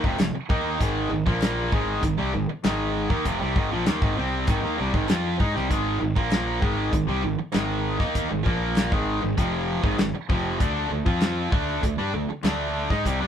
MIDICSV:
0, 0, Header, 1, 6, 480
1, 0, Start_track
1, 0, Tempo, 612245
1, 632, Time_signature, 4, 2, 24, 8
1, 10404, End_track
2, 0, Start_track
2, 0, Title_t, "Distorted electric guitar"
2, 0, Program_c, 0, 30
2, 30, Note_on_c, 0, 41, 86
2, 37, Note_on_c, 0, 48, 104
2, 140, Note_off_c, 0, 41, 0
2, 142, Note_off_c, 0, 48, 0
2, 150, Note_on_c, 0, 41, 62
2, 151, Note_on_c, 0, 48, 60
2, 266, Note_off_c, 0, 41, 0
2, 272, Note_off_c, 0, 48, 0
2, 387, Note_on_c, 0, 51, 81
2, 393, Note_on_c, 0, 58, 93
2, 396, Note_on_c, 0, 63, 81
2, 622, Note_off_c, 0, 51, 0
2, 625, Note_off_c, 0, 58, 0
2, 626, Note_on_c, 0, 44, 78
2, 627, Note_off_c, 0, 63, 0
2, 635, Note_on_c, 0, 51, 102
2, 640, Note_on_c, 0, 56, 108
2, 862, Note_off_c, 0, 44, 0
2, 864, Note_off_c, 0, 51, 0
2, 869, Note_off_c, 0, 56, 0
2, 871, Note_on_c, 0, 44, 76
2, 873, Note_on_c, 0, 51, 82
2, 984, Note_off_c, 0, 51, 0
2, 987, Note_on_c, 0, 46, 98
2, 991, Note_off_c, 0, 44, 0
2, 993, Note_on_c, 0, 53, 102
2, 1000, Note_on_c, 0, 58, 100
2, 1342, Note_off_c, 0, 46, 0
2, 1345, Note_off_c, 0, 53, 0
2, 1348, Note_off_c, 0, 58, 0
2, 1352, Note_on_c, 0, 44, 82
2, 1360, Note_on_c, 0, 51, 92
2, 1362, Note_on_c, 0, 56, 104
2, 1585, Note_off_c, 0, 44, 0
2, 1589, Note_off_c, 0, 51, 0
2, 1589, Note_off_c, 0, 56, 0
2, 1597, Note_on_c, 0, 44, 74
2, 1597, Note_on_c, 0, 51, 71
2, 1707, Note_off_c, 0, 51, 0
2, 1710, Note_on_c, 0, 48, 92
2, 1714, Note_off_c, 0, 44, 0
2, 1716, Note_on_c, 0, 55, 105
2, 1823, Note_off_c, 0, 48, 0
2, 1826, Note_off_c, 0, 55, 0
2, 1833, Note_on_c, 0, 44, 72
2, 1836, Note_on_c, 0, 51, 88
2, 1945, Note_off_c, 0, 44, 0
2, 1954, Note_off_c, 0, 51, 0
2, 2068, Note_on_c, 0, 44, 87
2, 2075, Note_on_c, 0, 51, 91
2, 2076, Note_on_c, 0, 56, 94
2, 2423, Note_off_c, 0, 44, 0
2, 2424, Note_off_c, 0, 51, 0
2, 2427, Note_off_c, 0, 56, 0
2, 2434, Note_on_c, 0, 51, 91
2, 2441, Note_on_c, 0, 58, 94
2, 2546, Note_off_c, 0, 51, 0
2, 2549, Note_off_c, 0, 58, 0
2, 2554, Note_on_c, 0, 41, 96
2, 2565, Note_on_c, 0, 48, 101
2, 2666, Note_off_c, 0, 41, 0
2, 2669, Note_off_c, 0, 48, 0
2, 2678, Note_on_c, 0, 48, 85
2, 2684, Note_on_c, 0, 55, 105
2, 2788, Note_off_c, 0, 48, 0
2, 2791, Note_off_c, 0, 55, 0
2, 2801, Note_on_c, 0, 44, 95
2, 2807, Note_on_c, 0, 51, 99
2, 2909, Note_off_c, 0, 44, 0
2, 2912, Note_off_c, 0, 51, 0
2, 2918, Note_on_c, 0, 46, 100
2, 2925, Note_on_c, 0, 53, 123
2, 3028, Note_off_c, 0, 46, 0
2, 3032, Note_off_c, 0, 53, 0
2, 3038, Note_on_c, 0, 51, 98
2, 3043, Note_on_c, 0, 58, 105
2, 3148, Note_off_c, 0, 51, 0
2, 3150, Note_off_c, 0, 58, 0
2, 3159, Note_on_c, 0, 44, 79
2, 3165, Note_on_c, 0, 51, 103
2, 3268, Note_off_c, 0, 44, 0
2, 3271, Note_off_c, 0, 51, 0
2, 3276, Note_on_c, 0, 48, 82
2, 3282, Note_on_c, 0, 55, 97
2, 3284, Note_on_c, 0, 60, 108
2, 3507, Note_off_c, 0, 48, 0
2, 3510, Note_off_c, 0, 55, 0
2, 3511, Note_off_c, 0, 60, 0
2, 3520, Note_on_c, 0, 44, 89
2, 3528, Note_on_c, 0, 51, 105
2, 3629, Note_off_c, 0, 44, 0
2, 3633, Note_off_c, 0, 51, 0
2, 3642, Note_on_c, 0, 51, 87
2, 3646, Note_on_c, 0, 58, 103
2, 3750, Note_off_c, 0, 51, 0
2, 3752, Note_off_c, 0, 58, 0
2, 3767, Note_on_c, 0, 48, 103
2, 3769, Note_on_c, 0, 55, 100
2, 3873, Note_off_c, 0, 48, 0
2, 3874, Note_off_c, 0, 55, 0
2, 3884, Note_on_c, 0, 44, 92
2, 3888, Note_on_c, 0, 51, 98
2, 3991, Note_off_c, 0, 44, 0
2, 3991, Note_off_c, 0, 51, 0
2, 3994, Note_on_c, 0, 53, 90
2, 3997, Note_on_c, 0, 60, 87
2, 4006, Note_on_c, 0, 65, 97
2, 4227, Note_off_c, 0, 53, 0
2, 4228, Note_off_c, 0, 60, 0
2, 4232, Note_off_c, 0, 65, 0
2, 4235, Note_on_c, 0, 56, 78
2, 4242, Note_on_c, 0, 63, 82
2, 4347, Note_off_c, 0, 56, 0
2, 4351, Note_off_c, 0, 63, 0
2, 4354, Note_on_c, 0, 48, 80
2, 4359, Note_on_c, 0, 55, 94
2, 4467, Note_off_c, 0, 48, 0
2, 4469, Note_off_c, 0, 55, 0
2, 4472, Note_on_c, 0, 44, 84
2, 4475, Note_on_c, 0, 51, 92
2, 4478, Note_on_c, 0, 56, 101
2, 4705, Note_off_c, 0, 44, 0
2, 4707, Note_off_c, 0, 51, 0
2, 4709, Note_off_c, 0, 56, 0
2, 4717, Note_on_c, 0, 44, 69
2, 4726, Note_on_c, 0, 51, 77
2, 4832, Note_off_c, 0, 51, 0
2, 4835, Note_on_c, 0, 46, 91
2, 4836, Note_off_c, 0, 44, 0
2, 4842, Note_on_c, 0, 53, 103
2, 4845, Note_on_c, 0, 58, 111
2, 5188, Note_off_c, 0, 46, 0
2, 5188, Note_on_c, 0, 44, 89
2, 5191, Note_off_c, 0, 53, 0
2, 5192, Note_off_c, 0, 58, 0
2, 5192, Note_on_c, 0, 51, 97
2, 5198, Note_on_c, 0, 56, 107
2, 5418, Note_off_c, 0, 44, 0
2, 5420, Note_off_c, 0, 51, 0
2, 5428, Note_on_c, 0, 44, 65
2, 5429, Note_off_c, 0, 56, 0
2, 5429, Note_on_c, 0, 51, 72
2, 5539, Note_off_c, 0, 51, 0
2, 5542, Note_on_c, 0, 48, 92
2, 5548, Note_on_c, 0, 55, 103
2, 5551, Note_off_c, 0, 44, 0
2, 5661, Note_off_c, 0, 48, 0
2, 5662, Note_on_c, 0, 44, 65
2, 5664, Note_off_c, 0, 55, 0
2, 5664, Note_on_c, 0, 51, 85
2, 5780, Note_off_c, 0, 44, 0
2, 5790, Note_off_c, 0, 51, 0
2, 5900, Note_on_c, 0, 44, 80
2, 5906, Note_on_c, 0, 51, 97
2, 5911, Note_on_c, 0, 56, 99
2, 6260, Note_off_c, 0, 51, 0
2, 6261, Note_off_c, 0, 44, 0
2, 6266, Note_off_c, 0, 56, 0
2, 6269, Note_on_c, 0, 51, 86
2, 6274, Note_on_c, 0, 58, 80
2, 6275, Note_on_c, 0, 63, 99
2, 6505, Note_off_c, 0, 51, 0
2, 6507, Note_off_c, 0, 58, 0
2, 6508, Note_off_c, 0, 63, 0
2, 6513, Note_on_c, 0, 44, 68
2, 6515, Note_on_c, 0, 51, 64
2, 6627, Note_off_c, 0, 51, 0
2, 6630, Note_on_c, 0, 46, 84
2, 6634, Note_off_c, 0, 44, 0
2, 6634, Note_on_c, 0, 53, 98
2, 6640, Note_on_c, 0, 58, 116
2, 6985, Note_off_c, 0, 46, 0
2, 6988, Note_off_c, 0, 53, 0
2, 6991, Note_off_c, 0, 58, 0
2, 6991, Note_on_c, 0, 44, 86
2, 6997, Note_on_c, 0, 51, 96
2, 7001, Note_on_c, 0, 56, 91
2, 7220, Note_off_c, 0, 44, 0
2, 7223, Note_off_c, 0, 51, 0
2, 7230, Note_on_c, 0, 44, 60
2, 7231, Note_off_c, 0, 56, 0
2, 7233, Note_on_c, 0, 51, 71
2, 7343, Note_off_c, 0, 44, 0
2, 7347, Note_on_c, 0, 41, 90
2, 7353, Note_off_c, 0, 51, 0
2, 7356, Note_on_c, 0, 48, 99
2, 7357, Note_on_c, 0, 53, 99
2, 7702, Note_off_c, 0, 41, 0
2, 7705, Note_on_c, 0, 44, 82
2, 7708, Note_off_c, 0, 48, 0
2, 7709, Note_off_c, 0, 53, 0
2, 7711, Note_on_c, 0, 51, 99
2, 7817, Note_off_c, 0, 44, 0
2, 7820, Note_off_c, 0, 51, 0
2, 7827, Note_on_c, 0, 44, 59
2, 7829, Note_on_c, 0, 51, 74
2, 7938, Note_off_c, 0, 44, 0
2, 7952, Note_off_c, 0, 51, 0
2, 8066, Note_on_c, 0, 41, 87
2, 8070, Note_on_c, 0, 48, 89
2, 8075, Note_on_c, 0, 53, 93
2, 8303, Note_off_c, 0, 41, 0
2, 8304, Note_off_c, 0, 48, 0
2, 8307, Note_on_c, 0, 50, 87
2, 8308, Note_off_c, 0, 53, 0
2, 8313, Note_on_c, 0, 57, 96
2, 8316, Note_on_c, 0, 62, 99
2, 8540, Note_off_c, 0, 50, 0
2, 8544, Note_off_c, 0, 57, 0
2, 8549, Note_off_c, 0, 62, 0
2, 8549, Note_on_c, 0, 50, 75
2, 8553, Note_on_c, 0, 57, 77
2, 8662, Note_off_c, 0, 50, 0
2, 8666, Note_on_c, 0, 53, 101
2, 8667, Note_off_c, 0, 57, 0
2, 8670, Note_on_c, 0, 60, 106
2, 8675, Note_on_c, 0, 65, 108
2, 9021, Note_off_c, 0, 53, 0
2, 9024, Note_on_c, 0, 50, 86
2, 9025, Note_off_c, 0, 60, 0
2, 9028, Note_off_c, 0, 65, 0
2, 9029, Note_on_c, 0, 57, 89
2, 9036, Note_on_c, 0, 62, 101
2, 9257, Note_off_c, 0, 50, 0
2, 9262, Note_off_c, 0, 57, 0
2, 9267, Note_on_c, 0, 50, 64
2, 9268, Note_off_c, 0, 62, 0
2, 9271, Note_on_c, 0, 57, 78
2, 9391, Note_off_c, 0, 50, 0
2, 9391, Note_off_c, 0, 57, 0
2, 9394, Note_on_c, 0, 55, 88
2, 9397, Note_on_c, 0, 62, 99
2, 9507, Note_off_c, 0, 55, 0
2, 9509, Note_off_c, 0, 62, 0
2, 9509, Note_on_c, 0, 50, 69
2, 9513, Note_on_c, 0, 57, 78
2, 9622, Note_off_c, 0, 50, 0
2, 9634, Note_off_c, 0, 57, 0
2, 9745, Note_on_c, 0, 50, 81
2, 9751, Note_on_c, 0, 57, 92
2, 9753, Note_on_c, 0, 62, 92
2, 10103, Note_off_c, 0, 50, 0
2, 10105, Note_off_c, 0, 57, 0
2, 10107, Note_off_c, 0, 62, 0
2, 10108, Note_on_c, 0, 56, 99
2, 10115, Note_on_c, 0, 63, 105
2, 10224, Note_off_c, 0, 56, 0
2, 10228, Note_off_c, 0, 63, 0
2, 10232, Note_on_c, 0, 48, 91
2, 10236, Note_on_c, 0, 55, 105
2, 10340, Note_off_c, 0, 55, 0
2, 10346, Note_off_c, 0, 48, 0
2, 10350, Note_on_c, 0, 55, 86
2, 10357, Note_on_c, 0, 62, 88
2, 10404, Note_off_c, 0, 55, 0
2, 10404, Note_off_c, 0, 62, 0
2, 10404, End_track
3, 0, Start_track
3, 0, Title_t, "Fingered electric bass"
3, 0, Program_c, 1, 33
3, 35, Note_on_c, 1, 29, 91
3, 145, Note_off_c, 1, 29, 0
3, 150, Note_on_c, 1, 29, 79
3, 262, Note_off_c, 1, 29, 0
3, 392, Note_on_c, 1, 39, 98
3, 615, Note_off_c, 1, 39, 0
3, 632, Note_on_c, 1, 32, 88
3, 855, Note_off_c, 1, 32, 0
3, 872, Note_on_c, 1, 32, 77
3, 983, Note_off_c, 1, 32, 0
3, 994, Note_on_c, 1, 34, 108
3, 1328, Note_off_c, 1, 34, 0
3, 1355, Note_on_c, 1, 32, 99
3, 1577, Note_off_c, 1, 32, 0
3, 1592, Note_on_c, 1, 32, 76
3, 1703, Note_off_c, 1, 32, 0
3, 1720, Note_on_c, 1, 36, 91
3, 1828, Note_off_c, 1, 36, 0
3, 1841, Note_on_c, 1, 32, 90
3, 1948, Note_off_c, 1, 32, 0
3, 2074, Note_on_c, 1, 32, 96
3, 2408, Note_off_c, 1, 32, 0
3, 2432, Note_on_c, 1, 39, 86
3, 2544, Note_off_c, 1, 39, 0
3, 2554, Note_on_c, 1, 29, 99
3, 2664, Note_off_c, 1, 29, 0
3, 2681, Note_on_c, 1, 36, 99
3, 2789, Note_off_c, 1, 36, 0
3, 2792, Note_on_c, 1, 32, 82
3, 2903, Note_off_c, 1, 32, 0
3, 2923, Note_on_c, 1, 34, 108
3, 3029, Note_off_c, 1, 34, 0
3, 3037, Note_on_c, 1, 39, 82
3, 3146, Note_off_c, 1, 39, 0
3, 3151, Note_on_c, 1, 32, 93
3, 3263, Note_off_c, 1, 32, 0
3, 3284, Note_on_c, 1, 36, 84
3, 3502, Note_off_c, 1, 36, 0
3, 3509, Note_on_c, 1, 32, 84
3, 3623, Note_off_c, 1, 32, 0
3, 3641, Note_on_c, 1, 39, 101
3, 3749, Note_off_c, 1, 39, 0
3, 3768, Note_on_c, 1, 36, 95
3, 3866, Note_off_c, 1, 36, 0
3, 3871, Note_on_c, 1, 32, 91
3, 3984, Note_off_c, 1, 32, 0
3, 3997, Note_on_c, 1, 41, 86
3, 4219, Note_off_c, 1, 41, 0
3, 4234, Note_on_c, 1, 44, 95
3, 4345, Note_off_c, 1, 44, 0
3, 4363, Note_on_c, 1, 36, 82
3, 4470, Note_off_c, 1, 36, 0
3, 4476, Note_on_c, 1, 32, 98
3, 4698, Note_off_c, 1, 32, 0
3, 4717, Note_on_c, 1, 32, 76
3, 4827, Note_off_c, 1, 32, 0
3, 4831, Note_on_c, 1, 34, 96
3, 5167, Note_off_c, 1, 34, 0
3, 5193, Note_on_c, 1, 32, 99
3, 5417, Note_off_c, 1, 32, 0
3, 5436, Note_on_c, 1, 32, 64
3, 5547, Note_off_c, 1, 32, 0
3, 5555, Note_on_c, 1, 36, 89
3, 5666, Note_off_c, 1, 36, 0
3, 5674, Note_on_c, 1, 32, 76
3, 5786, Note_off_c, 1, 32, 0
3, 5914, Note_on_c, 1, 32, 80
3, 6250, Note_off_c, 1, 32, 0
3, 6274, Note_on_c, 1, 39, 86
3, 6498, Note_off_c, 1, 39, 0
3, 6519, Note_on_c, 1, 32, 71
3, 6629, Note_off_c, 1, 32, 0
3, 6633, Note_on_c, 1, 34, 95
3, 6969, Note_off_c, 1, 34, 0
3, 6996, Note_on_c, 1, 32, 95
3, 7219, Note_off_c, 1, 32, 0
3, 7243, Note_on_c, 1, 32, 83
3, 7349, Note_off_c, 1, 32, 0
3, 7354, Note_on_c, 1, 29, 83
3, 7689, Note_off_c, 1, 29, 0
3, 7710, Note_on_c, 1, 32, 86
3, 7824, Note_off_c, 1, 32, 0
3, 7840, Note_on_c, 1, 32, 75
3, 7949, Note_off_c, 1, 32, 0
3, 8073, Note_on_c, 1, 29, 112
3, 8297, Note_off_c, 1, 29, 0
3, 8315, Note_on_c, 1, 38, 96
3, 8538, Note_off_c, 1, 38, 0
3, 8552, Note_on_c, 1, 38, 73
3, 8665, Note_off_c, 1, 38, 0
3, 8672, Note_on_c, 1, 41, 98
3, 9008, Note_off_c, 1, 41, 0
3, 9034, Note_on_c, 1, 38, 86
3, 9258, Note_off_c, 1, 38, 0
3, 9277, Note_on_c, 1, 38, 78
3, 9388, Note_off_c, 1, 38, 0
3, 9395, Note_on_c, 1, 43, 96
3, 9507, Note_off_c, 1, 43, 0
3, 9515, Note_on_c, 1, 38, 84
3, 9626, Note_off_c, 1, 38, 0
3, 9751, Note_on_c, 1, 38, 92
3, 10088, Note_off_c, 1, 38, 0
3, 10117, Note_on_c, 1, 44, 96
3, 10228, Note_off_c, 1, 44, 0
3, 10235, Note_on_c, 1, 36, 100
3, 10347, Note_off_c, 1, 36, 0
3, 10369, Note_on_c, 1, 43, 89
3, 10404, Note_off_c, 1, 43, 0
3, 10404, End_track
4, 0, Start_track
4, 0, Title_t, "Muted distorted electric guitar strokes"
4, 275, Note_on_c, 9, 29, 61
4, 354, Note_off_c, 9, 29, 0
4, 1955, Note_on_c, 9, 29, 60
4, 2033, Note_off_c, 9, 29, 0
4, 5789, Note_on_c, 9, 29, 56
4, 5868, Note_off_c, 9, 29, 0
4, 7948, Note_on_c, 9, 29, 61
4, 8026, Note_off_c, 9, 29, 0
4, 9632, Note_on_c, 9, 29, 58
4, 9710, Note_off_c, 9, 29, 0
4, 10404, End_track
5, 0, Start_track
5, 0, Title_t, "Muted fingered electric bass strokes"
5, 274, Note_on_c, 9, 29, 37
5, 352, Note_off_c, 9, 29, 0
5, 1963, Note_on_c, 9, 29, 34
5, 2041, Note_off_c, 9, 29, 0
5, 5802, Note_on_c, 9, 29, 36
5, 5881, Note_off_c, 9, 29, 0
5, 7959, Note_on_c, 9, 29, 38
5, 8038, Note_off_c, 9, 29, 0
5, 9634, Note_on_c, 9, 29, 44
5, 9712, Note_off_c, 9, 29, 0
5, 10404, End_track
6, 0, Start_track
6, 0, Title_t, "Drums"
6, 31, Note_on_c, 9, 36, 102
6, 110, Note_off_c, 9, 36, 0
6, 151, Note_on_c, 9, 39, 93
6, 152, Note_on_c, 9, 42, 64
6, 155, Note_on_c, 9, 38, 104
6, 229, Note_off_c, 9, 39, 0
6, 231, Note_off_c, 9, 42, 0
6, 234, Note_off_c, 9, 38, 0
6, 391, Note_on_c, 9, 36, 109
6, 470, Note_off_c, 9, 36, 0
6, 632, Note_on_c, 9, 36, 97
6, 634, Note_on_c, 9, 42, 70
6, 710, Note_off_c, 9, 36, 0
6, 712, Note_off_c, 9, 42, 0
6, 992, Note_on_c, 9, 36, 102
6, 1070, Note_off_c, 9, 36, 0
6, 1109, Note_on_c, 9, 39, 103
6, 1115, Note_on_c, 9, 42, 62
6, 1118, Note_on_c, 9, 38, 94
6, 1188, Note_off_c, 9, 39, 0
6, 1193, Note_off_c, 9, 42, 0
6, 1196, Note_off_c, 9, 38, 0
6, 1351, Note_on_c, 9, 36, 120
6, 1429, Note_off_c, 9, 36, 0
6, 1590, Note_on_c, 9, 36, 89
6, 1591, Note_on_c, 9, 42, 71
6, 1669, Note_off_c, 9, 36, 0
6, 1669, Note_off_c, 9, 42, 0
6, 2071, Note_on_c, 9, 42, 71
6, 2074, Note_on_c, 9, 38, 107
6, 2074, Note_on_c, 9, 39, 104
6, 2149, Note_off_c, 9, 42, 0
6, 2152, Note_off_c, 9, 39, 0
6, 2153, Note_off_c, 9, 38, 0
6, 2432, Note_on_c, 9, 36, 99
6, 2510, Note_off_c, 9, 36, 0
6, 2551, Note_on_c, 9, 36, 85
6, 2552, Note_on_c, 9, 42, 61
6, 2630, Note_off_c, 9, 36, 0
6, 2630, Note_off_c, 9, 42, 0
6, 2791, Note_on_c, 9, 36, 106
6, 2869, Note_off_c, 9, 36, 0
6, 3030, Note_on_c, 9, 42, 64
6, 3033, Note_on_c, 9, 38, 106
6, 3035, Note_on_c, 9, 39, 107
6, 3108, Note_off_c, 9, 42, 0
6, 3111, Note_off_c, 9, 38, 0
6, 3113, Note_off_c, 9, 39, 0
6, 3151, Note_on_c, 9, 36, 117
6, 3230, Note_off_c, 9, 36, 0
6, 3506, Note_on_c, 9, 42, 64
6, 3511, Note_on_c, 9, 36, 114
6, 3585, Note_off_c, 9, 42, 0
6, 3589, Note_off_c, 9, 36, 0
6, 3872, Note_on_c, 9, 36, 101
6, 3951, Note_off_c, 9, 36, 0
6, 3989, Note_on_c, 9, 39, 93
6, 3994, Note_on_c, 9, 42, 66
6, 3997, Note_on_c, 9, 38, 109
6, 4067, Note_off_c, 9, 39, 0
6, 4072, Note_off_c, 9, 42, 0
6, 4076, Note_off_c, 9, 38, 0
6, 4234, Note_on_c, 9, 36, 107
6, 4312, Note_off_c, 9, 36, 0
6, 4360, Note_on_c, 9, 38, 31
6, 4438, Note_off_c, 9, 38, 0
6, 4473, Note_on_c, 9, 36, 94
6, 4476, Note_on_c, 9, 42, 55
6, 4552, Note_off_c, 9, 36, 0
6, 4554, Note_off_c, 9, 42, 0
6, 4832, Note_on_c, 9, 36, 100
6, 4911, Note_off_c, 9, 36, 0
6, 4949, Note_on_c, 9, 39, 107
6, 4952, Note_on_c, 9, 42, 62
6, 4955, Note_on_c, 9, 38, 104
6, 5028, Note_off_c, 9, 39, 0
6, 5030, Note_off_c, 9, 42, 0
6, 5034, Note_off_c, 9, 38, 0
6, 5192, Note_on_c, 9, 36, 116
6, 5271, Note_off_c, 9, 36, 0
6, 5431, Note_on_c, 9, 36, 96
6, 5433, Note_on_c, 9, 42, 72
6, 5510, Note_off_c, 9, 36, 0
6, 5511, Note_off_c, 9, 42, 0
6, 5904, Note_on_c, 9, 39, 92
6, 5913, Note_on_c, 9, 42, 72
6, 5916, Note_on_c, 9, 38, 107
6, 5982, Note_off_c, 9, 39, 0
6, 5991, Note_off_c, 9, 42, 0
6, 5994, Note_off_c, 9, 38, 0
6, 6271, Note_on_c, 9, 36, 105
6, 6277, Note_on_c, 9, 38, 31
6, 6350, Note_off_c, 9, 36, 0
6, 6356, Note_off_c, 9, 38, 0
6, 6391, Note_on_c, 9, 36, 89
6, 6391, Note_on_c, 9, 42, 67
6, 6470, Note_off_c, 9, 36, 0
6, 6470, Note_off_c, 9, 42, 0
6, 6632, Note_on_c, 9, 36, 99
6, 6711, Note_off_c, 9, 36, 0
6, 6868, Note_on_c, 9, 39, 97
6, 6874, Note_on_c, 9, 42, 68
6, 6877, Note_on_c, 9, 38, 106
6, 6946, Note_off_c, 9, 39, 0
6, 6952, Note_off_c, 9, 42, 0
6, 6955, Note_off_c, 9, 38, 0
6, 6993, Note_on_c, 9, 36, 113
6, 7072, Note_off_c, 9, 36, 0
6, 7352, Note_on_c, 9, 36, 97
6, 7354, Note_on_c, 9, 42, 72
6, 7430, Note_off_c, 9, 36, 0
6, 7433, Note_off_c, 9, 42, 0
6, 7711, Note_on_c, 9, 36, 103
6, 7789, Note_off_c, 9, 36, 0
6, 7831, Note_on_c, 9, 42, 64
6, 7834, Note_on_c, 9, 38, 118
6, 7834, Note_on_c, 9, 39, 78
6, 7909, Note_off_c, 9, 42, 0
6, 7912, Note_off_c, 9, 38, 0
6, 7912, Note_off_c, 9, 39, 0
6, 8072, Note_on_c, 9, 36, 111
6, 8151, Note_off_c, 9, 36, 0
6, 8313, Note_on_c, 9, 36, 103
6, 8314, Note_on_c, 9, 42, 63
6, 8392, Note_off_c, 9, 36, 0
6, 8393, Note_off_c, 9, 42, 0
6, 8673, Note_on_c, 9, 36, 107
6, 8752, Note_off_c, 9, 36, 0
6, 8791, Note_on_c, 9, 39, 83
6, 8792, Note_on_c, 9, 42, 64
6, 8795, Note_on_c, 9, 38, 105
6, 8869, Note_off_c, 9, 39, 0
6, 8871, Note_off_c, 9, 42, 0
6, 8874, Note_off_c, 9, 38, 0
6, 9034, Note_on_c, 9, 36, 121
6, 9113, Note_off_c, 9, 36, 0
6, 9276, Note_on_c, 9, 36, 88
6, 9279, Note_on_c, 9, 42, 75
6, 9354, Note_off_c, 9, 36, 0
6, 9358, Note_off_c, 9, 42, 0
6, 9752, Note_on_c, 9, 39, 94
6, 9758, Note_on_c, 9, 42, 66
6, 9761, Note_on_c, 9, 38, 107
6, 9831, Note_off_c, 9, 39, 0
6, 9836, Note_off_c, 9, 42, 0
6, 9839, Note_off_c, 9, 38, 0
6, 10116, Note_on_c, 9, 36, 102
6, 10125, Note_on_c, 9, 38, 34
6, 10195, Note_off_c, 9, 36, 0
6, 10203, Note_off_c, 9, 38, 0
6, 10235, Note_on_c, 9, 36, 86
6, 10241, Note_on_c, 9, 42, 64
6, 10314, Note_off_c, 9, 36, 0
6, 10319, Note_off_c, 9, 42, 0
6, 10404, End_track
0, 0, End_of_file